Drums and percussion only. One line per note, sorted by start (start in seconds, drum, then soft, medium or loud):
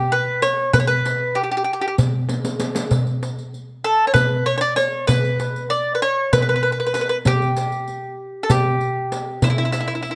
0.12 riq soft
0.42 riq soft
0.42 darbuka tek medium
0.74 riq medium
0.74 darbuka dum medium
0.90 riq soft
1.05 riq soft
1.05 darbuka tek medium
1.22 darbuka ka soft
1.36 darbuka ka soft
1.68 darbuka ka soft
1.98 riq medium
1.98 darbuka dum medium
2.29 riq medium
2.29 darbuka tek medium
2.45 riq medium
2.45 darbuka ka medium
2.60 riq medium
2.60 darbuka tek medium
2.75 riq medium
2.75 darbuka ka medium
2.91 riq medium
2.91 darbuka dum medium
3.07 riq soft
3.07 darbuka ka soft
3.23 riq soft
3.23 darbuka tek medium
3.37 riq soft
3.37 darbuka ka soft
3.54 riq soft
3.54 darbuka ka soft
4.15 riq medium
4.15 darbuka dum medium
4.47 riq soft
4.78 riq soft
4.78 darbuka tek medium
5.09 riq medium
5.09 darbuka dum medium
5.24 riq soft
5.24 darbuka ka soft
5.40 riq soft
5.40 darbuka tek medium
5.56 riq soft
5.56 darbuka ka soft
5.72 riq soft
5.72 darbuka ka soft
6.33 riq medium
6.33 darbuka dum medium
6.65 riq soft
6.95 riq soft
6.95 darbuka tek medium
7.25 riq medium
7.25 darbuka dum medium
7.42 riq soft
7.42 darbuka ka soft
7.56 riq soft
7.56 darbuka tek medium
7.72 riq soft
7.72 darbuka ka soft
7.88 riq soft
7.88 darbuka ka soft
8.50 riq medium
8.50 darbuka dum medium
8.81 riq soft
9.12 riq soft
9.12 darbuka tek medium
9.42 riq medium
9.42 darbuka dum medium
9.58 riq soft
9.58 darbuka ka soft
9.73 riq soft
9.73 darbuka tek medium
9.88 riq soft
9.88 darbuka ka soft
10.05 riq soft
10.05 darbuka ka soft